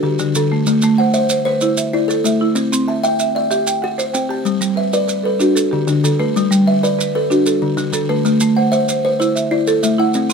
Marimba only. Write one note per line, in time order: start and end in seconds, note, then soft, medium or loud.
0.00 0.51 G4 medium
0.00 0.35 A4 medium
0.20 0.52 D3 medium
0.36 0.83 A4 medium
0.52 0.82 A3 medium
0.84 1.15 A3 medium
0.99 1.30 C5 medium
1.31 1.62 C5 medium
1.46 1.94 B4 medium
1.62 1.94 E4 medium
1.78 2.24 E5 medium
1.94 2.41 D5 medium
2.09 2.41 A4 medium
2.26 2.73 E5 medium
2.41 2.72 E4 medium
2.72 3.04 C4 medium
2.88 3.18 E5 medium
3.20 3.51 E5 medium
3.35 3.83 D5 medium
3.51 3.82 G4 medium
3.67 4.12 G5 medium
3.82 4.30 F#5 medium
3.98 4.30 C5 medium
4.13 4.61 G5 medium
4.29 4.61 G4 medium
4.61 4.93 G3 medium
4.76 5.07 B4 medium
5.08 5.40 B4 medium
5.23 5.54 A4 medium
5.40 5.56 D4 medium
5.55 6.03 A4 medium
5.71 6.19 G4 medium
5.88 6.19 D3 medium
6.04 6.51 A4 medium
6.20 6.51 A3 medium
6.51 6.83 G3 medium
6.67 6.97 B4 medium
6.99 7.30 B4 medium
7.15 7.45 A4 medium
7.30 7.46 D4 medium
7.46 7.92 A4 medium
7.77 8.09 D3 medium
7.94 8.41 A4 medium
8.09 8.40 A3 medium
8.41 8.73 A3 medium
8.57 8.88 C5 medium
8.89 9.20 C5 medium
9.05 9.52 B4 medium
9.20 9.52 E4 medium
9.36 9.82 E5 medium
9.51 9.99 D5 medium
9.68 9.99 A4 medium
9.83 10.30 E5 medium
9.98 10.30 E4 medium
10.30 10.33 C4 medium